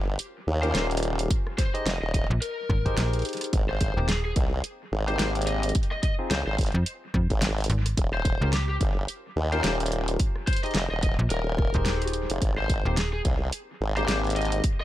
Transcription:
Already playing: G1
0.19 closed hi-hat
0.47 D#2
0.63 C#4 F4 G4 A#4 C5, closed hi-hat
0.74 D#1 C5, snare, closed hi-hat
0.91 closed hi-hat
0.97 closed hi-hat
1.03 closed hi-hat
1.19 closed hi-hat
1.30 kick, closed hi-hat
1.47 cross-stick
1.58 C5, kick, snare, closed hi-hat
1.74 D#4 G4 G#4 C5 D#5, closed hi-hat
1.86 F1, snare, closed hi-hat
2.02 D#1 D#5
2.14 D#5, kick, closed hi-hat
2.30 A#1
2.42 A#4, closed hi-hat
2.69 G#1, kick, cross-stick
2.85 D#4 G4 G#4 C5, kick, closed hi-hat
2.97 A#1, snare, closed hi-hat
3.13 closed hi-hat
3.19 closed hi-hat
3.22 closed hi-hat
3.25 closed hi-hat
3.29 closed hi-hat
3.33 closed hi-hat
3.37 closed hi-hat
3.41 cross-stick, closed hi-hat
3.44 closed hi-hat
3.53 G#1, kick, closed hi-hat
3.69 C5, cross-stick
3.81 kick, closed hi-hat
3.96 D#1 A#3 C4 D#4 G4
4.09 G#4, snare, closed hi-hat
4.25 G#4
4.36 C2, kick, closed hi-hat
4.64 closed hi-hat
4.92 G#1
5.07 A#3 C4 D#4 G4 C5, closed hi-hat
5.19 G#1 C5, snare, closed hi-hat
5.35 closed hi-hat
5.42 closed hi-hat
5.47 D#5, closed hi-hat
5.63 closed hi-hat
5.69 closed hi-hat
5.75 kick, closed hi-hat
5.83 closed hi-hat
5.91 D#5, cross-stick
6.03 D#5, kick, closed hi-hat
6.19 C4 D#4 F4 G#4
6.31 C#2 C5, snare, closed hi-hat
6.47 G#1 C5
6.58 kick, closed hi-hat
6.61 closed hi-hat
6.64 closed hi-hat
6.66 closed hi-hat
6.72 F2, closed hi-hat
6.86 closed hi-hat
7.14 F2, kick, cross-stick
7.30 G#1, kick, closed hi-hat
7.42 snare, closed hi-hat
7.58 closed hi-hat
7.61 closed hi-hat
7.64 closed hi-hat
7.66 closed hi-hat
7.70 G#1, closed hi-hat
7.86 cross-stick, closed hi-hat
7.97 D#1, kick, closed hi-hat
8.14 C5, cross-stick
8.25 kick, closed hi-hat
8.41 C#2 C#4 F4 G4 A#4
8.53 G4, snare, closed hi-hat
8.69 G4
8.81 G1, kick, closed hi-hat
9.08 closed hi-hat
9.36 D#2
9.52 C#4 F4 G4 A#4 C5, closed hi-hat
9.64 D#1 C5, snare, closed hi-hat
9.80 closed hi-hat
9.86 closed hi-hat
9.92 closed hi-hat
10.08 closed hi-hat
10.19 kick, closed hi-hat
10.36 cross-stick
10.47 C5, kick, closed hi-hat
10.53 closed hi-hat
10.56 closed hi-hat
10.63 D#4 G4 G#4 C5 D#5, closed hi-hat
10.66 closed hi-hat
10.71 snare, closed hi-hat
10.75 F1, closed hi-hat
10.91 D#1 D#5
11.03 D#5, kick, closed hi-hat
11.19 A#1
11.30 D#1 A#4, closed hi-hat
11.58 kick, cross-stick
11.74 D#1 D#4 G4 G#4 C5, kick, closed hi-hat
11.86 snare, closed hi-hat
12.02 closed hi-hat
12.07 closed hi-hat
12.13 closed hi-hat
12.30 F1, cross-stick, closed hi-hat
12.32 cross-stick
12.36 cross-stick
12.38 cross-stick
12.42 G#1, kick, cross-stick, closed hi-hat
12.46 cross-stick
12.50 cross-stick
12.54 C5, cross-stick
12.58 cross-stick
12.70 kick, closed hi-hat
12.85 D#1 A#3 C4 D#4 G4
12.97 G#4, snare, closed hi-hat
13.13 G#4
13.25 C2, kick, closed hi-hat
13.52 closed hi-hat
13.81 G#1
13.97 A#3 C4 D#4 G4 C5, closed hi-hat
14.08 G#1 C5, snare, closed hi-hat
14.24 closed hi-hat
14.27 closed hi-hat
14.30 closed hi-hat
14.32 closed hi-hat
14.36 D#5, closed hi-hat
14.42 closed hi-hat
14.45 closed hi-hat
14.52 closed hi-hat
14.64 kick, closed hi-hat
14.80 D#5, cross-stick

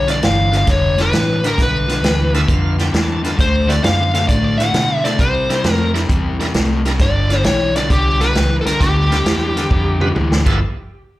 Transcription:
Already playing: B1
0.07 G2 D3 B3 F4 A4 D5, snare, closed hi-hat
0.22 G1 G2 E3 F5, snare, closed hi-hat
0.51 G2 D3 B3 F4 A4, snare, closed hi-hat
0.57 F5
0.66 F1 G2 D3 C#5, kick, snare, closed hi-hat
0.97 G2 D3 B3 F4 A4, snare, closed hi-hat
1.02 B4
1.13 A1 G2 E3, snare, closed hi-hat
1.44 G2 D3 B3 F4 A#4 B4, snare, closed hi-hat
1.58 B1 G2 D3, kick, snare, closed hi-hat
1.62 B4
1.88 G2 D3 B3 F4 A4, snare, closed hi-hat
2.03 D2 G2 E3, snare, closed hi-hat
2.33 G2 D3 B3 F4 A4 E5, snare, closed hi-hat
2.47 F2 G2 D3 F5, kick, closed hi-hat
2.78 G2 D3 B3 F4 A4 G5, snare, closed hi-hat
2.92 E2 G2 E3 A5, snare, closed hi-hat
3.23 G2 D3 B3 F4 A4 A5, snare, closed hi-hat
3.37 D2 D3 A3 C5, kick, closed hi-hat
3.67 D3 A3 C4 E4 F#4 D5, snare, closed hi-hat
3.82 F#2 D3 B3 F5, snare, closed hi-hat
4.14 D3 A3 C4 E4 F#4 F5, snare, closed hi-hat
4.28 A2 D3 A3 D5, kick, closed hi-hat
4.58 D3 A3 C4 E4 F#4 F#5, snare, closed hi-hat
4.74 B2 D3 B3, snare, closed hi-hat
5.04 D3 A3 C4 E4 A4 D5, snare, closed hi-hat
5.19 C3 G3 C5, kick, closed hi-hat
5.49 C3 G3 D4 E4 A#4, snare, closed hi-hat
5.64 F2 C3 A3, snare, closed hi-hat
5.73 A#4
5.94 C3 G3 D4 E4 A#4, snare, closed hi-hat
6.09 E2 C3 G3, kick, closed hi-hat
6.39 C3 G3 D4 E4 A#4, snare, closed hi-hat
6.54 C2 C3 A3, snare, closed hi-hat
6.85 C3 G3 D4 E4 A#4, snare, closed hi-hat
6.99 G1 G2 D3 D5, kick, snare, closed hi-hat
7.29 G2 D3 B3 F4 A4, snare, closed hi-hat
7.44 B1 G2 E3 C#5, snare, closed hi-hat
7.76 G2 D3 B3 F4 A4 D5, snare, closed hi-hat
7.89 C2 G2 D3 G4, kick, closed hi-hat
8.20 G2 D3 B3 F4 A4 B4, snare, closed hi-hat
8.35 C#2 G2 E3, snare, closed hi-hat
8.61 A4
8.65 G2 D3 B3 F4 A4 A#4, snare, closed hi-hat
8.80 D2 G2 D3 G4, kick, snare, closed hi-hat
9.10 G2 D3 B3 F4 A4, snare, closed hi-hat
9.25 E2 G2 E3, snare, closed hi-hat
9.56 G2 D3 B3 F4 A4, snare, closed hi-hat
9.70 F2 G2 D3, kick
10.00 G2 D3 B3 F4 B4, mid tom
10.15 D2 G2 E3, mid tom
10.32 snare
10.45 G1 G2 F3 B3 E4 F4 A4, kick, crash

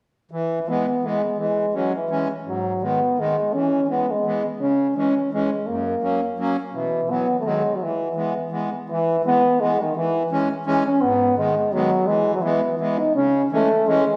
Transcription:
0.31 E3
0.68 E3 G#3 B3
1.03 E3 G#3 B3
1.38 E3 G#3
1.73 E3 F#3 G#3 C#4
1.96 E3
2.09 E3 G#3 C#4
2.45 G#2 F#3
2.82 D#3 G#3 B3
3.18 D#3 G#3 B3
3.53 E3 C#4
3.88 E3 G#3 B3
4.11 G#3
4.25 E3 G#3 B3
4.60 C#3 C#4
4.96 E3 G#3 C#4
5.31 E3 G#3 C#4
5.67 F#2 A#3
6.02 F#3 A#3 C#4
6.38 F#3 A#3 C#4
6.73 B2 E3
7.08 E3 F#3 B3
7.40 D#3 A3
7.45 F#3 G#3 B3
7.75 F#3
7.81 E3
8.14 E3 G#3 B3
8.50 E3 G#3 B3
8.89 E3
9.24 E3 G#3 B3
9.59 E3 G#3 B3
9.81 D#3
9.96 E3
10.30 E3 G#3 C#4
10.65 E3 G#3 C#4
10.86 C#4
11.01 G#2 B3
11.37 D#3 G#3 B3
11.72 D#3 F#3 G#3 B3
12.06 E3 G#3
12.34 F#3
12.42 E3 G#3 B3
12.78 E3 G#3 B3
12.99 D#4
13.15 C#3 C#4
13.50 E3 G#3 A3 C#4
13.86 E3 G#3 C#4

